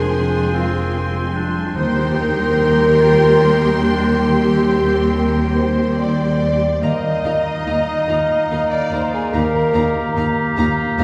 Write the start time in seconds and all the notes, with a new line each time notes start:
Already playing: F1 F2 F3 G#3 C4 D4 F4 G#4 C5 G5 G#5 C6
0.13 C4
0.52 C4 F4 C5
0.94 C4
1.35 G3 D4
1.75 D#2 D#3 G3 D#4 G4 C5 G5 C6
2.17 A#4 C5
2.59 C4
3.00 F4
3.42 C4 D#4
3.84 D4
4.26 D#3 C4 G4
4.70 C5
5.13 C4 A#4
5.55 C5
5.97 C4 D5
6.40 G4
6.81 D#2 D#3 A#3 D#4 D#5 F5 A#5
7.24 D#2 A#3 D#4 F4 F5 A#5
7.65 D#2 A#3 D#4 F5 A#5
8.08 D#2 A#3 D#4 F4 F5 A#5
8.50 D#2 A#3 D#4 F5 A#5
8.72 D5
8.91 D#2 A#3 D#4 A#4 C5 F5 A#5
9.13 G#4
9.32 D#2 D#3 A#3 D#4 G4 A#4 F5 A#5
9.73 D#2 A#3 D#4 F4 F5 A#5
10.15 D#2 A#3 D#4 F5 A#5
10.57 D#2 A#3 D#4 F4 F5 A#5
10.98 D#2 A#3 D#4 F5 A#5